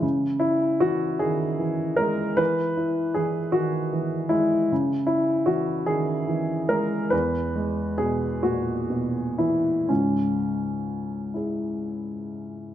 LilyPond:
<<
  \new Staff \with { instrumentName = "Upright piano" } { \time 6/8 \key cis \dorian \tempo 4. = 50 << { r8 e'8 fis'8 gis'4 ais'8 | b'4 gis'8 fis'4 e'8 | r8 e'8 fis'8 gis'4 ais'8 | b'4 gis'8 fis'4 e'8 |
cis'2. | } \\ { r2. | r2. | r2. | r2. |
r4. <e' gis'>4. | } >> }
  \new Staff \with { instrumentName = "Upright piano" } { \clef bass \time 6/8 \key cis \dorian cis4 e8 dis8 e8 gis8 | e8 e'8 e8 dis8 e8 gis8 | cis4 e8 dis8 e8 gis8 | e,8 gis8 b,8 ais,8 b,8 e8 |
<cis, gis,>2. | }
>>